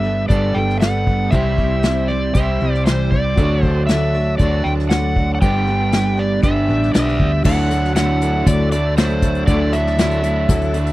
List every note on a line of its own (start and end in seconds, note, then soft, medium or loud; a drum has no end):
0.00 0.26 G1 medium
0.00 0.29 G3 medium
0.00 0.28 B3 medium
0.00 1.31 B3 medium
0.00 0.29 D4 medium
0.00 1.31 D4 medium
0.00 0.52 G4 medium
0.00 1.31 G4 medium
0.00 0.29 A4 medium
0.00 0.53 A4 medium
0.00 1.31 A4 medium
0.00 0.54 B4 medium
0.00 0.30 B4 medium
0.00 0.28 E5 medium
0.05 0.28 D4 soft
0.05 0.29 A4 medium
0.29 0.54 G1 medium
0.29 0.55 G3 medium
0.29 1.31 B3 medium
0.29 0.55 D4 medium
0.29 0.54 A4 medium
0.29 0.53 B4 medium
0.29 0.56 D5 loud
0.29 kick loud
0.29 closed hi-hat medium
0.54 1.29 G1 medium
0.54 0.79 D4 soft
0.54 1.31 G4 soft
0.54 0.80 A4 soft
0.54 1.33 A4 soft
0.54 0.80 B4 soft
0.54 1.33 B4 soft
0.54 0.79 G5 medium
0.70 snare soft
0.80 1.06 G3 medium
0.80 1.07 D4 medium
0.80 1.06 A4 medium
0.80 1.06 B4 medium
0.80 1.34 F#5 medium
0.80 snare loud
0.80 closed hi-hat medium
1.07 1.32 D4 soft
1.07 1.32 A4 soft
1.07 1.33 B4 soft
1.07 kick medium
1.31 2.31 C2 loud
1.31 1.58 C3 medium
1.31 1.58 E3 medium
1.31 1.58 G3 medium
1.31 1.58 C4 medium
1.31 3.36 C4 medium
1.31 3.33 E4 medium
1.31 1.57 E4 medium
1.31 3.36 E4 medium
1.31 3.33 G4 medium
1.31 3.36 G4 medium
1.31 2.34 G4 medium
1.31 3.35 C5 medium
1.31 1.57 C5 medium
1.31 3.34 C5 medium
1.31 2.11 E5 loud
1.31 kick loud
1.31 closed hi-hat medium
1.58 1.83 G3 soft
1.58 1.83 C4 soft
1.58 1.84 E4 medium
1.58 1.84 C5 medium
1.58 kick medium
1.83 2.09 C3 medium
1.83 2.10 E3 medium
1.83 2.09 G3 medium
1.83 2.09 C4 medium
1.83 2.08 E4 medium
1.83 2.07 C5 medium
1.83 snare loud
1.83 closed hi-hat medium
2.08 2.34 G3 soft
2.08 2.35 C4 soft
2.08 2.35 E4 soft
2.08 2.35 C5 medium
2.08 2.33 D5 medium
2.34 2.59 C2 loud
2.34 3.36 C3 medium
2.34 2.61 G3 medium
2.34 2.60 C4 medium
2.34 2.60 E4 medium
2.34 3.37 G4 medium
2.34 2.59 C5 medium
2.34 2.82 E5 loud
2.34 kick loud
2.34 closed hi-hat medium
2.61 3.34 C2 medium
2.61 2.86 G3 soft
2.61 2.85 C4 medium
2.61 2.85 E4 soft
2.61 2.86 C5 medium
2.74 snare soft
2.86 3.12 C3 medium
2.86 3.12 E3 medium
2.86 3.12 G3 medium
2.86 3.12 C4 medium
2.86 3.12 E4 medium
2.86 3.12 C5 medium
2.86 3.11 C5 medium
2.86 snare loud
2.86 closed hi-hat medium
3.11 3.38 G3 soft
3.11 3.38 C4 soft
3.11 3.38 E4 soft
3.11 3.38 C5 soft
3.11 3.65 D5 loud
3.11 kick medium
3.35 4.36 D2 loud
3.35 3.63 D3 medium
3.35 4.38 F#3 loud
3.35 3.63 A3 medium
3.35 5.40 D4 medium
3.35 3.64 D4 medium
3.35 5.37 F#4 medium
3.35 5.40 F#4 medium
3.35 3.63 F#4 medium
3.35 5.38 A4 medium
3.35 5.40 A4 medium
3.35 5.40 D5 medium
3.35 3.62 D5 medium
3.35 kick loud
3.35 closed hi-hat medium
3.40 5.39 D5 medium
3.63 3.88 D4 soft
3.63 3.89 F#4 soft
3.63 3.84 C5 loud
3.63 3.89 D5 medium
3.63 kick medium
3.87 4.14 D3 medium
3.87 4.14 A3 medium
3.87 4.15 D4 medium
3.87 4.14 F#4 loud
3.87 4.38 E5 medium
3.87 snare loud
3.87 closed hi-hat medium
3.91 4.13 D5 medium
4.14 4.39 D4 soft
4.14 4.40 F#4 soft
4.14 4.40 D5 medium
4.38 4.64 D2 medium
4.38 5.40 D3 medium
4.38 5.41 F#3 medium
4.38 4.65 A3 medium
4.38 4.66 D4 medium
4.38 4.65 F#4 medium
4.38 4.65 D5 medium
4.38 4.64 D5 medium
4.38 kick loud
4.38 closed hi-hat medium
4.64 5.38 D2 medium
4.64 4.91 D4 soft
4.64 4.91 F#4 medium
4.64 4.91 D5 medium
4.64 4.71 G5 medium
4.79 snare soft
4.89 5.16 D3 medium
4.89 5.17 A3 medium
4.89 5.17 D4 medium
4.89 5.17 F#4 medium
4.89 5.15 D5 medium
4.89 5.31 F#5 medium
4.89 snare loud
4.89 closed hi-hat medium
5.16 5.41 D4 soft
5.16 5.43 F#4 soft
5.16 5.42 D5 soft
5.16 kick medium
5.35 5.41 F#5 medium
5.40 6.40 G1 medium
5.40 6.42 G2 medium
5.40 6.43 D3 medium
5.40 5.67 G3 medium
5.40 6.43 B3 loud
5.40 5.68 D4 medium
5.40 7.44 D4 medium
5.40 7.41 G4 medium
5.40 7.43 G4 medium
5.40 5.67 G4 medium
5.40 7.41 B4 medium
5.40 7.43 B4 medium
5.40 5.66 B4 medium
5.40 7.43 D5 medium
5.40 7.42 D5 medium
5.40 6.20 G5 loud
5.40 kick loud
5.40 closed hi-hat medium
5.67 5.92 D4 soft
5.67 5.92 G4 medium
5.67 5.93 B4 medium
5.92 6.18 G3 medium
5.92 6.18 D4 medium
5.92 6.18 G4 medium
5.92 6.16 B4 loud
5.92 snare loud
5.92 closed hi-hat medium
6.17 6.42 D4 soft
6.17 6.42 G4 soft
6.17 6.43 B4 medium
6.17 6.43 D5 medium
6.42 6.67 G1 loud
6.42 7.44 G2 medium
6.42 7.44 D3 medium
6.42 6.68 G3 medium
6.42 7.45 B3 medium
6.42 6.69 D4 medium
6.42 6.68 G4 medium
6.42 6.67 B4 medium
6.42 6.93 E5 loud
6.42 kick loud
6.42 closed hi-hat medium
6.68 6.92 A1 medium
6.68 6.93 D4 soft
6.68 6.94 G4 soft
6.68 6.94 B4 medium
6.83 snare soft
6.94 7.17 B1 medium
6.94 7.20 G3 medium
6.94 7.19 D4 medium
6.94 7.18 G4 medium
6.94 7.17 B4 medium
6.94 7.30 D5 medium
6.94 7.42 E5 medium
6.94 snare loud
6.94 closed hi-hat medium
7.08 snare soft
7.19 7.43 D2 medium
7.19 7.44 D4 soft
7.19 7.45 G4 soft
7.19 7.45 B4 soft
7.19 kick medium
7.43 8.43 D2 loud
7.43 7.70 D3 medium
7.43 7.95 F#3 loud
7.43 7.70 A3 medium
7.43 7.71 D4 loud
7.43 7.70 E4 medium
7.43 10.93 E4 medium
7.43 9.43 F#4 medium
7.43 7.70 F#4 medium
7.43 10.93 F#4 medium
7.43 7.69 A4 medium
7.43 10.93 A4 medium
7.43 9.44 D5 medium
7.43 10.93 D5 medium
7.43 7.93 F#5 loud
7.43 kick loud
7.43 crash loud
7.47 9.45 E5 medium
7.58 closed hi-hat soft
7.70 7.96 A3 medium
7.70 7.96 D4 medium
7.70 7.95 E4 soft
7.70 7.96 F#4 medium
7.70 7.96 A4 soft
7.70 closed hi-hat medium
7.85 snare soft
7.95 8.75 D3 loud
7.95 8.75 F#3 loud
7.95 8.21 A3 medium
7.95 8.22 D4 loud
7.95 8.21 E4 medium
7.95 8.21 F#4 medium
7.95 8.20 A4 medium
7.95 8.48 F#5 medium
7.95 snare loud
7.95 closed hi-hat medium
8.21 8.73 A3 medium
8.21 8.73 D4 medium
8.21 8.46 E4 soft
8.21 8.47 F#4 medium
8.21 8.46 A4 medium
8.21 closed hi-hat medium
8.46 9.44 D2 medium
8.46 8.72 D3 medium
8.46 8.72 A3 medium
8.46 8.72 E4 medium
8.46 8.72 F#4 medium
8.46 8.70 A4 medium
8.46 8.71 D5 loud
8.46 kick loud
8.46 closed hi-hat loud
8.72 8.97 A3 medium
8.72 8.98 D4 medium
8.72 8.96 E4 soft
8.72 8.97 F#4 soft
8.72 8.97 A4 soft
8.72 8.97 D5 medium
8.72 closed hi-hat medium
8.96 9.48 F#3 medium
8.96 9.22 A3 medium
8.96 9.49 D4 medium
8.96 9.23 E4 medium
8.96 9.22 F#4 medium
8.96 9.21 A4 medium
8.96 9.45 C5 medium
8.96 snare loud
8.96 closed hi-hat loud
9.10 closed hi-hat soft
9.22 9.48 E4 soft
9.22 9.48 F#4 soft
9.22 9.48 A4 soft
9.22 kick medium
9.22 closed hi-hat medium
9.35 closed hi-hat soft
9.46 10.45 D2 loud
9.46 9.73 D3 medium
9.46 9.98 F#3 medium
9.46 9.74 A3 medium
9.46 9.74 D4 loud
9.46 9.74 E4 medium
9.46 10.93 F#4 medium
9.46 9.74 F#4 medium
9.46 9.72 A4 medium
9.46 9.74 D5 medium
9.46 10.93 D5 medium
9.46 10.93 F#5 medium
9.46 kick loud
9.46 closed hi-hat medium
9.73 9.98 A3 medium
9.73 9.99 D4 medium
9.73 9.98 E4 soft
9.73 9.98 F#4 soft
9.73 9.98 A4 medium
9.73 10.93 E5 medium
9.73 closed hi-hat medium
9.87 snare soft
9.98 10.49 D3 medium
9.98 10.76 F#3 loud
9.98 10.24 A3 medium
9.98 10.24 D4 medium
9.98 10.24 E4 medium
9.98 10.23 F#4 medium
9.98 10.22 A4 medium
9.98 snare loud
9.98 closed hi-hat loud
10.11 closed hi-hat medium
10.23 10.74 A3 medium
10.23 10.74 D4 medium
10.23 10.48 E4 soft
10.23 10.49 F#4 medium
10.23 10.49 A4 medium
10.23 closed hi-hat medium
10.49 10.93 D2 loud
10.49 10.74 D3 medium
10.49 10.75 A3 loud
10.49 10.75 E4 medium
10.49 10.74 F#4 medium
10.49 10.72 A4 loud
10.49 kick loud
10.49 closed hi-hat loud
10.62 closed hi-hat soft
10.74 10.93 A3 medium
10.74 10.93 D4 medium
10.74 10.93 E4 medium
10.74 10.93 F#4 medium
10.74 10.93 A4 medium
10.74 closed hi-hat medium
10.87 closed hi-hat soft